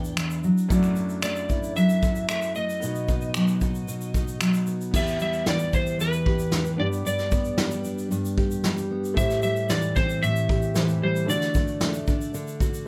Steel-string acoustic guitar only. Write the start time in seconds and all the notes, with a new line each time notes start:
Already playing: E2 E3 D4 E4
0.18 E3
0.44 F#3
0.70 F#3
0.97 D4
1.24 A3
1.50 E4
1.77 F#3
2.30 A3
2.57 A3
2.83 B2
3.09 D#4
3.36 F#3
3.62 F#4
3.88 B2
4.14 D#4
4.41 F#3
4.68 B3
4.95 E2
5.20 G3
5.47 E3
5.74 E4
6.00 E2
6.27 G4
6.53 E3
6.79 G2
7.05 G2
7.32 B3
7.59 G3
7.85 D4
8.11 G2
8.37 G4
8.64 G3
8.91 B3
9.17 A2
9.43 G3
9.71 E3
9.97 C4
10.23 A2
10.50 G4
10.76 E3
11.03 G3
11.29 D3
11.55 A3
11.82 A3
12.08 D4
12.34 D3
12.61 F#4